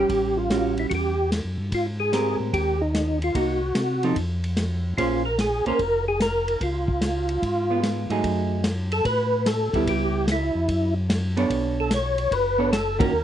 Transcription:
Already playing: G3 C#4 G4
0.09 A1, kick, ride
0.37 F4
0.50 G3 C#4 F#4, snare, hi-hat pedal, ride
0.77 E4, ride
0.90 E2 F#4, kick, ride
0.95 G4
1.32 snare, hi-hat pedal, ride
1.44 F#2
1.58 G2
1.72 G#2 F4, kick, ride
2.00 G#4
2.12 G#3 C4 G4 A#4, snare, hi-hat pedal, ride
2.40 A2
2.53 D#2 G4, kick, ride
2.81 D#4
2.94 snare, hi-hat pedal, ride
3.22 F4, ride
3.35 C2 A#3 D#4 F#4, kick, ride
3.75 C3, snare, hi-hat pedal, ride
4.03 F3 C4 D#4 A4, ride
4.16 F2, kick, ride
4.44 ride
4.57 snare, hi-hat pedal, ride
4.98 A#1 A#3 C#4 F4 G#4 C5, kick, ride
5.25 A#4
5.38 G#4, snare, hi-hat pedal, ride
5.65 A#1 A#3 C#4 G#4 A#4 C5, ride
5.78 F1, kick, ride
6.08 G#4
6.20 A#4, snare, hi-hat pedal, ride
6.48 ride
6.60 C#2 F4, kick, ride
6.88 kick
7.01 snare, hi-hat pedal, ride
7.29 ride
7.42 G#2, kick, ride
7.70 G#3 B3 F4
7.83 snare, hi-hat pedal, ride
8.10 G#2 F#3 A3 D#4 G#4, ride
8.24 F#2, kick, ride
8.64 snare, hi-hat pedal, ride
8.92 A4, ride
9.05 A2 B4, kick, ride
9.46 A4, snare, hi-hat pedal, ride
9.73 D2 G3 B3 E4, kick, ride
9.87 C#2 G4, kick, ride
10.27 snare, hi-hat pedal, ride
10.32 E4
10.55 F2
10.68 F#2, kick, ride
11.10 snare, hi-hat pedal, ride
11.37 B3 D4 A4 C#5, ride
11.50 B1, kick, ride
11.80 A4
11.91 C#5, snare, hi-hat pedal, ride
12.18 ride
12.31 F#1 B4, kick, ride
12.58 B3 D4 A4 C#5
12.73 A4, snare, hi-hat pedal, ride
12.99 D#3 A#3 C#4 F#4 A#4, kick, ride
13.13 D#2

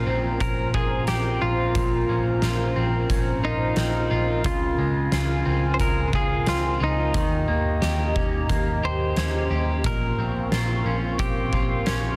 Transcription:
Already playing: A#2 C#4 F4 A#4 C5 A#5
0.07 A#1 C4
0.40 A#1 C#4 A#4, kick, closed hi-hat
0.74 A#1 F4 G#4, kick
1.07 A#1 C4 G4, snare, closed hi-hat
1.41 A#1 F4
1.75 A#1 A#2, kick, closed hi-hat
2.09 A#1 C#4
2.42 A#1 F4, snare, closed hi-hat
2.76 A#1 C4
3.10 A#1 C#4, kick, closed hi-hat
3.43 A#1 D#4 F4
3.76 A#1 C4, snare, closed hi-hat
4.11 A#1 F4
4.44 C#2 C#3 F4 G#5, kick, closed hi-hat
4.78 C#2 G#3
5.12 C#2 F4, snare, closed hi-hat
5.45 C#2 C4
5.74 C5
5.79 C#2 G#3 A#4, kick, closed hi-hat
6.13 C#2 F4 G#4, kick
6.46 C#2 C4 F4, snare, closed hi-hat
6.80 C#2 D#4 F4
7.14 D#2 D#3 G4 D#5 A#5, kick, closed hi-hat
7.48 D#2 A#3
7.82 D#2 G4, snare, closed hi-hat
8.16 D#2 C#4, kick
8.49 D#2 A#3, kick, closed hi-hat
8.83 D#2 G4 C5
9.16 D#2 C#4, snare, closed hi-hat
9.50 D#2 G4
9.84 A#1 A#2 A#4 F5 C6 C#6, kick, closed hi-hat
10.18 A#1 C4
10.52 A#1 F4, snare, closed hi-hat
10.85 A#1 C#4
11.19 A#1 C4 G4, kick, closed hi-hat
11.53 A#1 F4, kick
11.86 A#1 C#4, snare, closed hi-hat

